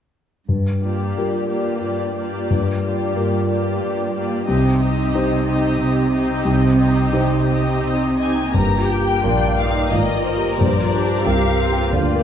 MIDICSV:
0, 0, Header, 1, 7, 480
1, 0, Start_track
1, 0, Tempo, 677966
1, 338, Time_signature, 3, 2, 24, 8
1, 1774, Tempo, 657174
1, 4654, Tempo, 700117
1, 6574, Tempo, 671141
1, 8707, End_track
2, 0, Start_track
2, 0, Title_t, "Violin section"
2, 0, Program_c, 0, 48
2, 5844, Note_on_c, 0, 80, 52
2, 6079, Note_off_c, 0, 80, 0
2, 6100, Note_on_c, 0, 82, 49
2, 6339, Note_off_c, 0, 82, 0
2, 6340, Note_on_c, 0, 79, 59
2, 6817, Note_off_c, 0, 79, 0
2, 6822, Note_on_c, 0, 77, 56
2, 7054, Note_on_c, 0, 75, 53
2, 7061, Note_off_c, 0, 77, 0
2, 7531, Note_on_c, 0, 74, 56
2, 7540, Note_off_c, 0, 75, 0
2, 8004, Note_off_c, 0, 74, 0
2, 8015, Note_on_c, 0, 77, 57
2, 8498, Note_off_c, 0, 77, 0
2, 8707, End_track
3, 0, Start_track
3, 0, Title_t, "Violin section"
3, 0, Program_c, 1, 48
3, 585, Note_on_c, 1, 74, 28
3, 588, Note_on_c, 1, 67, 29
3, 1050, Note_off_c, 1, 67, 0
3, 1050, Note_off_c, 1, 74, 0
3, 1059, Note_on_c, 1, 67, 30
3, 1059, Note_on_c, 1, 74, 31
3, 1528, Note_off_c, 1, 67, 0
3, 1528, Note_off_c, 1, 74, 0
3, 1536, Note_on_c, 1, 74, 31
3, 1543, Note_on_c, 1, 67, 31
3, 2003, Note_off_c, 1, 74, 0
3, 2005, Note_off_c, 1, 67, 0
3, 2014, Note_on_c, 1, 67, 33
3, 2015, Note_on_c, 1, 74, 32
3, 2479, Note_off_c, 1, 67, 0
3, 2479, Note_off_c, 1, 74, 0
3, 2487, Note_on_c, 1, 67, 35
3, 2488, Note_on_c, 1, 74, 37
3, 2962, Note_off_c, 1, 74, 0
3, 2965, Note_off_c, 1, 67, 0
3, 2971, Note_on_c, 1, 74, 36
3, 2975, Note_on_c, 1, 67, 37
3, 3202, Note_off_c, 1, 67, 0
3, 3208, Note_on_c, 1, 75, 37
3, 3209, Note_off_c, 1, 74, 0
3, 3211, Note_on_c, 1, 67, 36
3, 3440, Note_off_c, 1, 75, 0
3, 3441, Note_off_c, 1, 67, 0
3, 3449, Note_on_c, 1, 75, 40
3, 3450, Note_on_c, 1, 67, 40
3, 3924, Note_off_c, 1, 67, 0
3, 3924, Note_off_c, 1, 75, 0
3, 3933, Note_on_c, 1, 75, 43
3, 3934, Note_on_c, 1, 67, 41
3, 4402, Note_off_c, 1, 75, 0
3, 4403, Note_off_c, 1, 67, 0
3, 4411, Note_on_c, 1, 75, 42
3, 4414, Note_on_c, 1, 67, 41
3, 4873, Note_off_c, 1, 67, 0
3, 4876, Note_off_c, 1, 75, 0
3, 4881, Note_on_c, 1, 67, 41
3, 4884, Note_on_c, 1, 75, 42
3, 5343, Note_off_c, 1, 67, 0
3, 5346, Note_off_c, 1, 75, 0
3, 5351, Note_on_c, 1, 67, 41
3, 5355, Note_on_c, 1, 75, 42
3, 5842, Note_off_c, 1, 67, 0
3, 5844, Note_off_c, 1, 75, 0
3, 5850, Note_on_c, 1, 67, 32
3, 5855, Note_on_c, 1, 75, 34
3, 6095, Note_off_c, 1, 67, 0
3, 6097, Note_off_c, 1, 75, 0
3, 6106, Note_on_c, 1, 70, 37
3, 6108, Note_on_c, 1, 67, 36
3, 6549, Note_off_c, 1, 70, 0
3, 6550, Note_off_c, 1, 67, 0
3, 6573, Note_on_c, 1, 65, 35
3, 6573, Note_on_c, 1, 74, 35
3, 7044, Note_off_c, 1, 74, 0
3, 7053, Note_on_c, 1, 74, 42
3, 7056, Note_on_c, 1, 70, 42
3, 7057, Note_off_c, 1, 65, 0
3, 7294, Note_off_c, 1, 74, 0
3, 7300, Note_on_c, 1, 72, 41
3, 7998, Note_off_c, 1, 70, 0
3, 8010, Note_on_c, 1, 67, 43
3, 8011, Note_on_c, 1, 70, 42
3, 8018, Note_off_c, 1, 72, 0
3, 8256, Note_off_c, 1, 67, 0
3, 8266, Note_on_c, 1, 65, 48
3, 8485, Note_off_c, 1, 65, 0
3, 8494, Note_on_c, 1, 65, 51
3, 8495, Note_on_c, 1, 74, 49
3, 8496, Note_off_c, 1, 70, 0
3, 8707, Note_off_c, 1, 65, 0
3, 8707, Note_off_c, 1, 74, 0
3, 8707, End_track
4, 0, Start_track
4, 0, Title_t, "Grand piano"
4, 0, Program_c, 2, 0
4, 343, Note_on_c, 2, 43, 33
4, 457, Control_c, 2, 64, 127
4, 809, Note_off_c, 2, 43, 0
4, 827, Note_on_c, 2, 65, 27
4, 830, Note_on_c, 2, 67, 27
4, 832, Note_on_c, 2, 70, 29
4, 1749, Note_off_c, 2, 65, 0
4, 1750, Note_off_c, 2, 67, 0
4, 1751, Note_off_c, 2, 70, 0
4, 1772, Note_on_c, 2, 43, 37
4, 1788, Control_c, 2, 64, 0
4, 1909, Control_c, 2, 64, 127
4, 2236, Note_off_c, 2, 43, 0
4, 2250, Note_on_c, 2, 65, 31
4, 2252, Note_on_c, 2, 67, 30
4, 2255, Note_on_c, 2, 70, 33
4, 3187, Note_off_c, 2, 65, 0
4, 3188, Note_off_c, 2, 67, 0
4, 3189, Note_off_c, 2, 70, 0
4, 3217, Note_on_c, 2, 36, 46
4, 3228, Control_c, 2, 64, 0
4, 3353, Control_c, 2, 64, 127
4, 3681, Note_off_c, 2, 36, 0
4, 3700, Note_on_c, 2, 63, 36
4, 3702, Note_on_c, 2, 67, 36
4, 3705, Note_on_c, 2, 72, 40
4, 4628, Note_off_c, 2, 63, 0
4, 4629, Note_off_c, 2, 67, 0
4, 4631, Note_off_c, 2, 72, 0
4, 4652, Note_on_c, 2, 36, 49
4, 4667, Control_c, 2, 64, 0
4, 4798, Control_c, 2, 64, 127
4, 5105, Note_off_c, 2, 36, 0
4, 5119, Note_on_c, 2, 55, 36
4, 5119, Note_on_c, 2, 63, 35
4, 5127, Note_on_c, 2, 72, 39
4, 6074, Note_off_c, 2, 55, 0
4, 6074, Note_off_c, 2, 63, 0
4, 6078, Note_off_c, 2, 72, 0
4, 6087, Note_on_c, 2, 43, 39
4, 6116, Control_c, 2, 64, 0
4, 6228, Control_c, 2, 64, 127
4, 6254, Note_on_c, 2, 65, 27
4, 6397, Note_on_c, 2, 67, 29
4, 6509, Note_off_c, 2, 65, 0
4, 6566, Note_on_c, 2, 70, 34
4, 6661, Note_off_c, 2, 67, 0
4, 6729, Note_on_c, 2, 77, 31
4, 6828, Note_off_c, 2, 70, 0
4, 6895, Note_on_c, 2, 79, 32
4, 6990, Note_off_c, 2, 77, 0
4, 7022, Note_off_c, 2, 43, 0
4, 7055, Note_on_c, 2, 77, 34
4, 7155, Note_off_c, 2, 79, 0
4, 7218, Note_on_c, 2, 70, 33
4, 7316, Note_off_c, 2, 77, 0
4, 7373, Note_on_c, 2, 67, 33
4, 7477, Note_off_c, 2, 70, 0
4, 7543, Note_on_c, 2, 43, 42
4, 7556, Control_c, 2, 64, 0
4, 7632, Note_off_c, 2, 67, 0
4, 7671, Control_c, 2, 64, 127
4, 7703, Note_on_c, 2, 65, 30
4, 7853, Note_on_c, 2, 67, 35
4, 7956, Note_off_c, 2, 65, 0
4, 8005, Note_off_c, 2, 43, 0
4, 8017, Note_on_c, 2, 70, 39
4, 8113, Note_off_c, 2, 67, 0
4, 8175, Note_on_c, 2, 77, 36
4, 8276, Note_off_c, 2, 70, 0
4, 8338, Note_on_c, 2, 79, 42
4, 8434, Note_off_c, 2, 77, 0
4, 8506, Note_on_c, 2, 77, 40
4, 8592, Note_off_c, 2, 79, 0
4, 8654, Note_on_c, 2, 70, 43
4, 8707, Note_off_c, 2, 70, 0
4, 8707, Note_off_c, 2, 77, 0
4, 8707, End_track
5, 0, Start_track
5, 0, Title_t, "Viola section"
5, 0, Program_c, 3, 48
5, 579, Note_on_c, 3, 65, 29
5, 583, Note_on_c, 3, 58, 28
5, 1049, Note_off_c, 3, 65, 0
5, 1051, Note_off_c, 3, 58, 0
5, 1061, Note_on_c, 3, 58, 30
5, 1065, Note_on_c, 3, 65, 30
5, 1523, Note_off_c, 3, 58, 0
5, 1529, Note_off_c, 3, 65, 0
5, 1531, Note_on_c, 3, 58, 33
5, 1537, Note_on_c, 3, 65, 30
5, 2000, Note_off_c, 3, 58, 0
5, 2003, Note_off_c, 3, 65, 0
5, 2018, Note_on_c, 3, 58, 33
5, 2018, Note_on_c, 3, 65, 33
5, 2483, Note_off_c, 3, 58, 0
5, 2483, Note_off_c, 3, 65, 0
5, 2494, Note_on_c, 3, 65, 34
5, 2496, Note_on_c, 3, 58, 35
5, 2968, Note_off_c, 3, 65, 0
5, 2969, Note_off_c, 3, 58, 0
5, 2977, Note_on_c, 3, 58, 40
5, 2984, Note_on_c, 3, 65, 39
5, 3212, Note_off_c, 3, 58, 0
5, 3216, Note_off_c, 3, 65, 0
5, 3227, Note_on_c, 3, 60, 37
5, 3231, Note_on_c, 3, 63, 37
5, 3456, Note_off_c, 3, 60, 0
5, 3458, Note_off_c, 3, 63, 0
5, 3465, Note_on_c, 3, 60, 36
5, 3465, Note_on_c, 3, 63, 39
5, 3927, Note_off_c, 3, 63, 0
5, 3932, Note_off_c, 3, 60, 0
5, 3936, Note_on_c, 3, 63, 45
5, 3940, Note_on_c, 3, 60, 42
5, 4397, Note_off_c, 3, 60, 0
5, 4401, Note_off_c, 3, 63, 0
5, 4406, Note_on_c, 3, 60, 44
5, 4410, Note_on_c, 3, 63, 43
5, 4873, Note_off_c, 3, 60, 0
5, 4875, Note_off_c, 3, 63, 0
5, 4881, Note_on_c, 3, 60, 42
5, 4884, Note_on_c, 3, 63, 41
5, 5347, Note_off_c, 3, 60, 0
5, 5349, Note_off_c, 3, 63, 0
5, 5368, Note_on_c, 3, 63, 39
5, 5369, Note_on_c, 3, 60, 38
5, 5848, Note_off_c, 3, 60, 0
5, 5849, Note_off_c, 3, 63, 0
5, 5856, Note_on_c, 3, 60, 36
5, 5857, Note_on_c, 3, 63, 35
5, 6098, Note_off_c, 3, 60, 0
5, 6098, Note_off_c, 3, 63, 0
5, 6106, Note_on_c, 3, 58, 38
5, 6106, Note_on_c, 3, 67, 36
5, 6549, Note_off_c, 3, 67, 0
5, 6569, Note_on_c, 3, 62, 40
5, 6814, Note_off_c, 3, 62, 0
5, 6822, Note_on_c, 3, 63, 44
5, 7057, Note_off_c, 3, 63, 0
5, 7072, Note_on_c, 3, 65, 39
5, 7515, Note_off_c, 3, 58, 0
5, 7544, Note_on_c, 3, 55, 43
5, 7544, Note_on_c, 3, 67, 41
5, 7549, Note_off_c, 3, 65, 0
5, 7771, Note_on_c, 3, 62, 46
5, 7776, Note_off_c, 3, 55, 0
5, 8003, Note_on_c, 3, 60, 42
5, 8010, Note_off_c, 3, 62, 0
5, 8482, Note_off_c, 3, 60, 0
5, 8492, Note_on_c, 3, 58, 45
5, 8707, Note_off_c, 3, 58, 0
5, 8707, Note_off_c, 3, 67, 0
5, 8707, End_track
6, 0, Start_track
6, 0, Title_t, "Cello section"
6, 0, Program_c, 4, 48
6, 344, Note_on_c, 4, 43, 36
6, 767, Note_off_c, 4, 43, 0
6, 823, Note_on_c, 4, 43, 35
6, 1244, Note_off_c, 4, 43, 0
6, 1304, Note_on_c, 4, 43, 37
6, 1721, Note_off_c, 4, 43, 0
6, 1776, Note_on_c, 4, 43, 40
6, 2197, Note_off_c, 4, 43, 0
6, 2254, Note_on_c, 4, 43, 42
6, 2676, Note_off_c, 4, 43, 0
6, 2737, Note_on_c, 4, 43, 46
6, 3162, Note_off_c, 4, 43, 0
6, 3223, Note_on_c, 4, 48, 45
6, 3642, Note_off_c, 4, 48, 0
6, 3699, Note_on_c, 4, 48, 48
6, 4121, Note_off_c, 4, 48, 0
6, 4182, Note_on_c, 4, 48, 52
6, 4601, Note_off_c, 4, 48, 0
6, 4663, Note_on_c, 4, 48, 55
6, 5069, Note_off_c, 4, 48, 0
6, 5120, Note_on_c, 4, 48, 49
6, 5546, Note_off_c, 4, 48, 0
6, 5599, Note_on_c, 4, 48, 47
6, 6042, Note_off_c, 4, 48, 0
6, 6094, Note_on_c, 4, 43, 45
6, 6543, Note_off_c, 4, 43, 0
6, 6575, Note_on_c, 4, 46, 42
6, 7030, Note_off_c, 4, 46, 0
6, 7058, Note_on_c, 4, 44, 46
6, 7513, Note_off_c, 4, 44, 0
6, 7539, Note_on_c, 4, 46, 49
6, 7989, Note_off_c, 4, 46, 0
6, 8018, Note_on_c, 4, 48, 50
6, 8471, Note_off_c, 4, 48, 0
6, 8494, Note_on_c, 4, 50, 53
6, 8707, Note_off_c, 4, 50, 0
6, 8707, End_track
7, 0, Start_track
7, 0, Title_t, "Double bass section"
7, 0, Program_c, 5, 48
7, 6099, Note_on_c, 5, 31, 44
7, 6546, Note_off_c, 5, 31, 0
7, 6570, Note_on_c, 5, 34, 48
7, 7027, Note_off_c, 5, 34, 0
7, 7050, Note_on_c, 5, 32, 47
7, 7509, Note_off_c, 5, 32, 0
7, 7534, Note_on_c, 5, 34, 48
7, 7986, Note_off_c, 5, 34, 0
7, 8003, Note_on_c, 5, 36, 52
7, 8464, Note_off_c, 5, 36, 0
7, 8491, Note_on_c, 5, 38, 53
7, 8707, Note_off_c, 5, 38, 0
7, 8707, End_track
0, 0, End_of_file